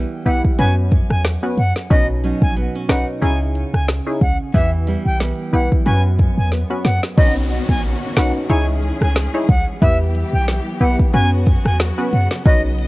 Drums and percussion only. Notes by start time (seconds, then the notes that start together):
0.26 closed hi-hat
0.44 kick
0.58 closed hi-hat
0.91 kick, closed hi-hat
1.10 cross-stick
1.25 cross-stick, snare, closed hi-hat
1.58 closed hi-hat
1.76 snare
1.91 kick, closed hi-hat
2.24 closed hi-hat
2.42 kick
2.57 closed hi-hat
2.89 cross-stick, snare, closed hi-hat
3.22 closed hi-hat
3.55 closed hi-hat
3.74 cross-stick
3.88 cross-stick, snare, closed hi-hat
4.21 kick, closed hi-hat
4.54 kick, closed hi-hat
4.87 closed hi-hat
5.20 snare, closed hi-hat
5.53 closed hi-hat
5.72 kick
5.86 closed hi-hat
6.19 kick, closed hi-hat
6.52 snare, closed hi-hat
6.85 snare, closed hi-hat
7.03 snare
7.18 kick, closed hi-hat
7.51 closed hi-hat
7.69 kick
7.84 closed hi-hat
8.17 cross-stick, snare, closed hi-hat
8.50 closed hi-hat
8.83 closed hi-hat
9.02 cross-stick
9.16 cross-stick, snare, closed hi-hat
9.49 kick, closed hi-hat
9.82 kick, closed hi-hat
10.15 closed hi-hat
10.48 snare, closed hi-hat
10.81 closed hi-hat
10.99 kick
11.14 closed hi-hat
11.47 kick, closed hi-hat
11.66 cross-stick
11.80 cross-stick, snare, closed hi-hat
12.13 closed hi-hat
12.31 snare
12.46 kick, closed hi-hat
12.79 closed hi-hat